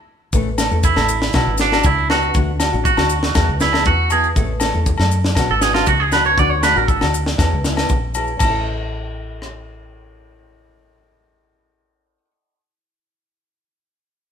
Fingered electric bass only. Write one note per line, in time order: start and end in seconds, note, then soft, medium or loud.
0.33 0.69 A1 medium
0.71 0.95 E2 medium
0.97 1.32 A1 medium
1.34 1.46 B1 loud
1.47 1.82 G#1 medium
1.84 2.31 C#2 medium
2.35 2.70 D2 medium
2.74 2.97 A1 medium
2.98 3.33 D2 medium
3.35 3.47 E2 loud
3.49 3.84 C#2 medium
3.86 4.33 E2 medium
4.37 4.72 A1 medium
4.75 4.98 E2 medium
4.99 5.34 F#2 medium
5.37 5.49 B1 medium
5.50 5.85 G#1 medium
5.87 6.35 C#2 medium
6.38 6.74 D2 medium
6.76 7.00 A1 medium
7.03 7.37 D2 medium
7.38 7.51 E2 medium
7.53 7.88 C#2 medium
7.90 8.37 A#1 medium
8.40 12.17 A1 medium